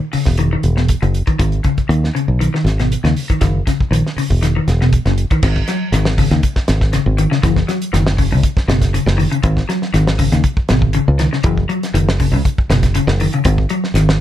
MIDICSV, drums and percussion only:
0, 0, Header, 1, 2, 480
1, 0, Start_track
1, 0, Key_signature, 5, "minor"
1, 0, Tempo, 502513
1, 1333, Time_signature, 4, 2, 24, 8
1, 13570, End_track
2, 0, Start_track
2, 0, Title_t, "Drums"
2, 123, Note_on_c, 9, 46, 65
2, 218, Note_off_c, 9, 46, 0
2, 244, Note_on_c, 9, 38, 28
2, 252, Note_on_c, 9, 36, 59
2, 339, Note_off_c, 9, 38, 0
2, 347, Note_off_c, 9, 36, 0
2, 357, Note_on_c, 9, 42, 72
2, 453, Note_off_c, 9, 42, 0
2, 605, Note_on_c, 9, 42, 50
2, 700, Note_off_c, 9, 42, 0
2, 734, Note_on_c, 9, 38, 26
2, 829, Note_off_c, 9, 38, 0
2, 845, Note_on_c, 9, 42, 70
2, 851, Note_on_c, 9, 36, 63
2, 941, Note_off_c, 9, 42, 0
2, 946, Note_off_c, 9, 36, 0
2, 981, Note_on_c, 9, 42, 33
2, 1076, Note_off_c, 9, 42, 0
2, 1094, Note_on_c, 9, 42, 49
2, 1189, Note_off_c, 9, 42, 0
2, 1214, Note_on_c, 9, 42, 30
2, 1217, Note_on_c, 9, 36, 65
2, 1309, Note_off_c, 9, 42, 0
2, 1313, Note_off_c, 9, 36, 0
2, 1333, Note_on_c, 9, 36, 101
2, 1333, Note_on_c, 9, 42, 75
2, 1429, Note_off_c, 9, 36, 0
2, 1429, Note_off_c, 9, 42, 0
2, 1454, Note_on_c, 9, 42, 32
2, 1549, Note_off_c, 9, 42, 0
2, 1566, Note_on_c, 9, 42, 44
2, 1572, Note_on_c, 9, 36, 71
2, 1661, Note_off_c, 9, 42, 0
2, 1668, Note_off_c, 9, 36, 0
2, 1697, Note_on_c, 9, 42, 30
2, 1700, Note_on_c, 9, 36, 59
2, 1793, Note_off_c, 9, 42, 0
2, 1796, Note_off_c, 9, 36, 0
2, 1821, Note_on_c, 9, 42, 64
2, 1916, Note_off_c, 9, 42, 0
2, 1950, Note_on_c, 9, 38, 27
2, 2046, Note_off_c, 9, 38, 0
2, 2066, Note_on_c, 9, 42, 46
2, 2162, Note_off_c, 9, 42, 0
2, 2305, Note_on_c, 9, 42, 60
2, 2401, Note_off_c, 9, 42, 0
2, 2436, Note_on_c, 9, 38, 26
2, 2531, Note_off_c, 9, 38, 0
2, 2547, Note_on_c, 9, 42, 47
2, 2549, Note_on_c, 9, 38, 27
2, 2642, Note_off_c, 9, 42, 0
2, 2644, Note_off_c, 9, 38, 0
2, 2669, Note_on_c, 9, 42, 29
2, 2671, Note_on_c, 9, 38, 26
2, 2765, Note_off_c, 9, 42, 0
2, 2767, Note_off_c, 9, 38, 0
2, 2788, Note_on_c, 9, 42, 66
2, 2883, Note_off_c, 9, 42, 0
2, 2911, Note_on_c, 9, 42, 33
2, 2913, Note_on_c, 9, 38, 28
2, 3007, Note_off_c, 9, 42, 0
2, 3009, Note_off_c, 9, 38, 0
2, 3023, Note_on_c, 9, 46, 62
2, 3119, Note_off_c, 9, 46, 0
2, 3151, Note_on_c, 9, 36, 65
2, 3152, Note_on_c, 9, 42, 32
2, 3247, Note_off_c, 9, 36, 0
2, 3248, Note_off_c, 9, 42, 0
2, 3258, Note_on_c, 9, 42, 76
2, 3260, Note_on_c, 9, 38, 30
2, 3264, Note_on_c, 9, 36, 88
2, 3354, Note_off_c, 9, 42, 0
2, 3356, Note_off_c, 9, 38, 0
2, 3360, Note_off_c, 9, 36, 0
2, 3506, Note_on_c, 9, 36, 70
2, 3508, Note_on_c, 9, 42, 51
2, 3510, Note_on_c, 9, 38, 26
2, 3602, Note_off_c, 9, 36, 0
2, 3604, Note_off_c, 9, 42, 0
2, 3606, Note_off_c, 9, 38, 0
2, 3634, Note_on_c, 9, 36, 68
2, 3730, Note_off_c, 9, 36, 0
2, 3755, Note_on_c, 9, 42, 75
2, 3850, Note_off_c, 9, 42, 0
2, 3883, Note_on_c, 9, 38, 28
2, 3978, Note_off_c, 9, 38, 0
2, 3992, Note_on_c, 9, 46, 61
2, 4088, Note_off_c, 9, 46, 0
2, 4113, Note_on_c, 9, 36, 57
2, 4209, Note_off_c, 9, 36, 0
2, 4228, Note_on_c, 9, 42, 78
2, 4230, Note_on_c, 9, 38, 28
2, 4324, Note_off_c, 9, 42, 0
2, 4326, Note_off_c, 9, 38, 0
2, 4468, Note_on_c, 9, 42, 53
2, 4470, Note_on_c, 9, 38, 26
2, 4563, Note_off_c, 9, 42, 0
2, 4565, Note_off_c, 9, 38, 0
2, 4595, Note_on_c, 9, 38, 25
2, 4691, Note_off_c, 9, 38, 0
2, 4705, Note_on_c, 9, 42, 72
2, 4706, Note_on_c, 9, 36, 68
2, 4801, Note_off_c, 9, 42, 0
2, 4802, Note_off_c, 9, 36, 0
2, 4831, Note_on_c, 9, 42, 34
2, 4832, Note_on_c, 9, 38, 26
2, 4926, Note_off_c, 9, 42, 0
2, 4928, Note_off_c, 9, 38, 0
2, 4945, Note_on_c, 9, 42, 58
2, 5040, Note_off_c, 9, 42, 0
2, 5068, Note_on_c, 9, 42, 33
2, 5071, Note_on_c, 9, 36, 62
2, 5164, Note_off_c, 9, 42, 0
2, 5167, Note_off_c, 9, 36, 0
2, 5183, Note_on_c, 9, 49, 92
2, 5185, Note_on_c, 9, 36, 108
2, 5185, Note_on_c, 9, 38, 31
2, 5278, Note_off_c, 9, 49, 0
2, 5280, Note_off_c, 9, 38, 0
2, 5281, Note_off_c, 9, 36, 0
2, 5311, Note_on_c, 9, 36, 75
2, 5407, Note_off_c, 9, 36, 0
2, 5421, Note_on_c, 9, 42, 53
2, 5423, Note_on_c, 9, 38, 28
2, 5517, Note_off_c, 9, 42, 0
2, 5519, Note_off_c, 9, 38, 0
2, 5661, Note_on_c, 9, 42, 73
2, 5663, Note_on_c, 9, 38, 31
2, 5757, Note_off_c, 9, 42, 0
2, 5759, Note_off_c, 9, 38, 0
2, 5782, Note_on_c, 9, 38, 66
2, 5878, Note_off_c, 9, 38, 0
2, 5903, Note_on_c, 9, 36, 65
2, 5903, Note_on_c, 9, 46, 70
2, 5998, Note_off_c, 9, 46, 0
2, 5999, Note_off_c, 9, 36, 0
2, 6029, Note_on_c, 9, 42, 47
2, 6031, Note_on_c, 9, 38, 30
2, 6124, Note_off_c, 9, 42, 0
2, 6126, Note_off_c, 9, 38, 0
2, 6142, Note_on_c, 9, 42, 74
2, 6145, Note_on_c, 9, 36, 76
2, 6238, Note_off_c, 9, 42, 0
2, 6240, Note_off_c, 9, 36, 0
2, 6265, Note_on_c, 9, 38, 30
2, 6268, Note_on_c, 9, 36, 70
2, 6361, Note_off_c, 9, 38, 0
2, 6364, Note_off_c, 9, 36, 0
2, 6379, Note_on_c, 9, 42, 52
2, 6381, Note_on_c, 9, 38, 70
2, 6475, Note_off_c, 9, 42, 0
2, 6476, Note_off_c, 9, 38, 0
2, 6504, Note_on_c, 9, 38, 27
2, 6509, Note_on_c, 9, 36, 60
2, 6600, Note_off_c, 9, 38, 0
2, 6604, Note_off_c, 9, 36, 0
2, 6618, Note_on_c, 9, 42, 72
2, 6620, Note_on_c, 9, 38, 30
2, 6714, Note_off_c, 9, 42, 0
2, 6716, Note_off_c, 9, 38, 0
2, 6861, Note_on_c, 9, 42, 57
2, 6957, Note_off_c, 9, 42, 0
2, 6992, Note_on_c, 9, 38, 31
2, 7087, Note_off_c, 9, 38, 0
2, 7100, Note_on_c, 9, 42, 80
2, 7102, Note_on_c, 9, 36, 99
2, 7102, Note_on_c, 9, 38, 31
2, 7196, Note_off_c, 9, 42, 0
2, 7197, Note_off_c, 9, 36, 0
2, 7198, Note_off_c, 9, 38, 0
2, 7225, Note_on_c, 9, 38, 32
2, 7226, Note_on_c, 9, 36, 73
2, 7321, Note_off_c, 9, 36, 0
2, 7321, Note_off_c, 9, 38, 0
2, 7342, Note_on_c, 9, 42, 53
2, 7344, Note_on_c, 9, 38, 28
2, 7438, Note_off_c, 9, 42, 0
2, 7439, Note_off_c, 9, 38, 0
2, 7466, Note_on_c, 9, 42, 53
2, 7562, Note_off_c, 9, 42, 0
2, 7584, Note_on_c, 9, 42, 83
2, 7586, Note_on_c, 9, 38, 32
2, 7680, Note_off_c, 9, 42, 0
2, 7682, Note_off_c, 9, 38, 0
2, 7704, Note_on_c, 9, 38, 69
2, 7799, Note_off_c, 9, 38, 0
2, 7817, Note_on_c, 9, 36, 64
2, 7817, Note_on_c, 9, 46, 67
2, 7912, Note_off_c, 9, 46, 0
2, 7913, Note_off_c, 9, 36, 0
2, 8057, Note_on_c, 9, 36, 80
2, 8057, Note_on_c, 9, 42, 84
2, 8152, Note_off_c, 9, 36, 0
2, 8152, Note_off_c, 9, 42, 0
2, 8183, Note_on_c, 9, 36, 73
2, 8189, Note_on_c, 9, 38, 31
2, 8279, Note_off_c, 9, 36, 0
2, 8284, Note_off_c, 9, 38, 0
2, 8305, Note_on_c, 9, 42, 53
2, 8306, Note_on_c, 9, 38, 76
2, 8400, Note_off_c, 9, 42, 0
2, 8402, Note_off_c, 9, 38, 0
2, 8421, Note_on_c, 9, 36, 67
2, 8422, Note_on_c, 9, 42, 57
2, 8424, Note_on_c, 9, 38, 29
2, 8516, Note_off_c, 9, 36, 0
2, 8518, Note_off_c, 9, 42, 0
2, 8519, Note_off_c, 9, 38, 0
2, 8543, Note_on_c, 9, 42, 67
2, 8639, Note_off_c, 9, 42, 0
2, 8667, Note_on_c, 9, 38, 67
2, 8763, Note_off_c, 9, 38, 0
2, 8781, Note_on_c, 9, 46, 61
2, 8877, Note_off_c, 9, 46, 0
2, 8907, Note_on_c, 9, 42, 55
2, 9002, Note_off_c, 9, 42, 0
2, 9011, Note_on_c, 9, 42, 74
2, 9014, Note_on_c, 9, 36, 105
2, 9106, Note_off_c, 9, 42, 0
2, 9109, Note_off_c, 9, 36, 0
2, 9139, Note_on_c, 9, 36, 65
2, 9142, Note_on_c, 9, 38, 30
2, 9235, Note_off_c, 9, 36, 0
2, 9237, Note_off_c, 9, 38, 0
2, 9262, Note_on_c, 9, 42, 54
2, 9264, Note_on_c, 9, 38, 28
2, 9357, Note_off_c, 9, 42, 0
2, 9359, Note_off_c, 9, 38, 0
2, 9381, Note_on_c, 9, 38, 28
2, 9477, Note_off_c, 9, 38, 0
2, 9494, Note_on_c, 9, 42, 68
2, 9496, Note_on_c, 9, 38, 30
2, 9589, Note_off_c, 9, 42, 0
2, 9591, Note_off_c, 9, 38, 0
2, 9623, Note_on_c, 9, 38, 71
2, 9718, Note_off_c, 9, 38, 0
2, 9731, Note_on_c, 9, 46, 68
2, 9732, Note_on_c, 9, 36, 66
2, 9827, Note_off_c, 9, 36, 0
2, 9827, Note_off_c, 9, 46, 0
2, 9860, Note_on_c, 9, 42, 52
2, 9862, Note_on_c, 9, 38, 30
2, 9956, Note_off_c, 9, 42, 0
2, 9958, Note_off_c, 9, 38, 0
2, 9969, Note_on_c, 9, 42, 69
2, 9971, Note_on_c, 9, 36, 77
2, 10065, Note_off_c, 9, 42, 0
2, 10066, Note_off_c, 9, 36, 0
2, 10095, Note_on_c, 9, 36, 72
2, 10190, Note_off_c, 9, 36, 0
2, 10207, Note_on_c, 9, 42, 53
2, 10209, Note_on_c, 9, 38, 70
2, 10302, Note_off_c, 9, 42, 0
2, 10304, Note_off_c, 9, 38, 0
2, 10333, Note_on_c, 9, 36, 61
2, 10429, Note_off_c, 9, 36, 0
2, 10442, Note_on_c, 9, 42, 70
2, 10538, Note_off_c, 9, 42, 0
2, 10688, Note_on_c, 9, 42, 57
2, 10690, Note_on_c, 9, 38, 31
2, 10784, Note_off_c, 9, 42, 0
2, 10786, Note_off_c, 9, 38, 0
2, 10822, Note_on_c, 9, 38, 28
2, 10917, Note_off_c, 9, 38, 0
2, 10922, Note_on_c, 9, 42, 72
2, 10929, Note_on_c, 9, 36, 109
2, 11017, Note_off_c, 9, 42, 0
2, 11025, Note_off_c, 9, 36, 0
2, 11057, Note_on_c, 9, 36, 66
2, 11152, Note_off_c, 9, 36, 0
2, 11171, Note_on_c, 9, 42, 49
2, 11266, Note_off_c, 9, 42, 0
2, 11302, Note_on_c, 9, 42, 55
2, 11304, Note_on_c, 9, 38, 26
2, 11398, Note_off_c, 9, 42, 0
2, 11400, Note_off_c, 9, 38, 0
2, 11414, Note_on_c, 9, 42, 81
2, 11510, Note_off_c, 9, 42, 0
2, 11544, Note_on_c, 9, 38, 74
2, 11640, Note_off_c, 9, 38, 0
2, 11650, Note_on_c, 9, 46, 69
2, 11651, Note_on_c, 9, 36, 66
2, 11746, Note_off_c, 9, 46, 0
2, 11747, Note_off_c, 9, 36, 0
2, 11893, Note_on_c, 9, 36, 76
2, 11896, Note_on_c, 9, 42, 77
2, 11989, Note_off_c, 9, 36, 0
2, 11992, Note_off_c, 9, 42, 0
2, 12019, Note_on_c, 9, 36, 71
2, 12115, Note_off_c, 9, 36, 0
2, 12134, Note_on_c, 9, 42, 56
2, 12135, Note_on_c, 9, 38, 71
2, 12229, Note_off_c, 9, 42, 0
2, 12231, Note_off_c, 9, 38, 0
2, 12254, Note_on_c, 9, 42, 54
2, 12256, Note_on_c, 9, 36, 66
2, 12256, Note_on_c, 9, 38, 27
2, 12349, Note_off_c, 9, 42, 0
2, 12351, Note_off_c, 9, 36, 0
2, 12351, Note_off_c, 9, 38, 0
2, 12366, Note_on_c, 9, 42, 72
2, 12461, Note_off_c, 9, 42, 0
2, 12494, Note_on_c, 9, 38, 68
2, 12590, Note_off_c, 9, 38, 0
2, 12609, Note_on_c, 9, 46, 67
2, 12705, Note_off_c, 9, 46, 0
2, 12733, Note_on_c, 9, 42, 56
2, 12829, Note_off_c, 9, 42, 0
2, 12844, Note_on_c, 9, 42, 80
2, 12849, Note_on_c, 9, 36, 99
2, 12940, Note_off_c, 9, 42, 0
2, 12944, Note_off_c, 9, 36, 0
2, 12974, Note_on_c, 9, 36, 67
2, 13069, Note_off_c, 9, 36, 0
2, 13081, Note_on_c, 9, 42, 50
2, 13177, Note_off_c, 9, 42, 0
2, 13218, Note_on_c, 9, 38, 28
2, 13313, Note_off_c, 9, 38, 0
2, 13326, Note_on_c, 9, 42, 75
2, 13328, Note_on_c, 9, 38, 30
2, 13422, Note_off_c, 9, 42, 0
2, 13424, Note_off_c, 9, 38, 0
2, 13458, Note_on_c, 9, 38, 74
2, 13553, Note_off_c, 9, 38, 0
2, 13570, End_track
0, 0, End_of_file